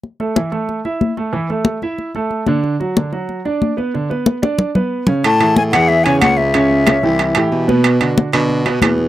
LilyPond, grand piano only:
\new Staff \with { instrumentName = "Grand piano" } { \time 4/4 \key a \major \tempo 4 = 184 r8 <a a'>8 <e e'>8 <a a'>4 <e' e''>4 <a a'>8 | <e e'>8 <a a'>4 <e' e''>4 <a a'>4 <d d'>8~ | <d d'>8 <fis fis'>8 <d d'>8 <fis fis'>4 <d' d''>4 <b b'>8 | <d d'>8 <b b'>4 <d' d''>4 <b b'>4 <cis cis'>8 |
r8 <e e' gis'>4 <e e' gis'>4 <cis cis' cis''>8 <cis cis' cis''>4 | <cis cis' cis''>4 <cis cis' cis''>8 <e e' g'>4 <e e' g'>4 <b, b b'>8~ | <b, b b'>8 <d d' fis'>4 <d d' fis'>4 <b, b b'>8 <b, b b'>4 | }